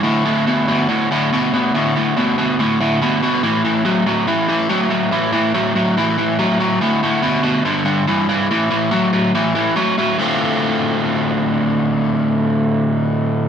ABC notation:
X:1
M:4/4
L:1/8
Q:1/4=142
K:Dm
V:1 name="Overdriven electric guitar" clef=bass
[D,,A,,] [D,,A,,] [D,,=B,,] [D,,B,,] [D,,A,,] [D,,A,,] [D,,B,,] [D,,B,,] | [D,,A,,] [D,,A,,] [D,,=B,,] [D,,B,,] [D,,A,,] [D,,A,,] [D,,B,,] [D,,B,,] | [A,,E,] [A,,E,] [A,,^F,] [A,,F,] [A,,E,] [A,,E,] [A,,F,] [A,,F,] | [A,,E,] [A,,E,] [A,,^F,] [A,,F,] [A,,E,] [A,,E,] [A,,F,] [A,,F,] |
[D,,A,,] [D,,A,,] [D,,=B,,] [D,,B,,] [G,,D,] [G,,D,] [G,,E,] [G,,E,] | [A,,E,] [A,,E,] [A,,^F,] [A,,F,] [A,,E,] [A,,E,] [A,,F,] [A,,F,] | [D,,A,,D,A,CF]8- | [D,,A,,D,A,CF]8 |]